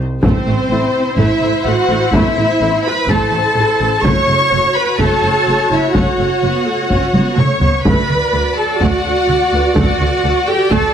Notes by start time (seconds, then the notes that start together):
Already playing: G4 G5
0.22 A1 A3 C4 E4 C5, taiko
0.47 A1 A3
0.70 A1 A3 E4 E5
1.17 A1 A3 E4 E5, taiko
1.41 A1 A3
1.66 A1 A3 F#4 F#5
1.89 A1 A3
2.13 A1 A3 B3 E4 E5 B5, taiko
2.37 A1 A3
2.61 A1 A3 E5
2.85 B4 B5
3.08 A1 A3 A4 A5, taiko
3.32 A1 A3
3.56 A1 A3 E4 A4
3.81 A1 A3
4.04 F#1 A3 F#4 C#5 C#6, taiko
4.28 F#1 A3
4.53 F#1 A3
4.75 B4 B5
4.99 F#1 A3 A4 A5, taiko
5.23 F#1 A3
5.47 F#1 A3
5.71 F#1 A3 E4 E5
5.95 F#1 A3 F#4 F#5, taiko
6.18 F#1 A3
6.42 F#1 B3
6.66 A3
6.89 F#1 C#4, taiko
7.14 F#1 B3, taiko high
7.36 F#1 A3 C#5 C#6, taiko mid
7.60 F#1 B3, taiko low
7.84 D2 A3 F#4 B4 D5 B5, taiko
8.09 D2 A3
8.33 D2 A3
8.56 A4 A5
8.80 D2 A3 F#4 F#5, taiko
9.04 D2 A3
9.27 D2 A3
9.52 D2 A3 B4
9.75 D2 A3 F#4 F#5, taiko
10.00 D2 A3
10.23 D2 A3
10.47 G4 A4 G5
10.71 D2 A3 A4 A5, taiko